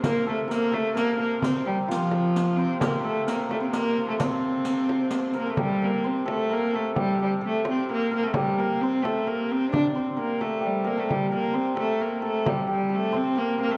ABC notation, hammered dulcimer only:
X:1
M:3/4
L:1/16
Q:1/4=130
K:Gdor
V:1 name="Hammered dulcimer"
B2 A2 B2 A2 B2 B2 | c2 G2 F6 c2 | B2 A2 B3 c B3 A | c8- c2 B A |
G2 B2 c2 A2 B2 A2 | G2 G2 A2 c2 B2 B A | G2 B2 c2 A2 B4 | d2 c2 B2 A2 G2 B A |
G2 B2 c2 A2 B2 A2 | G2 G2 A2 c2 B2 B A |]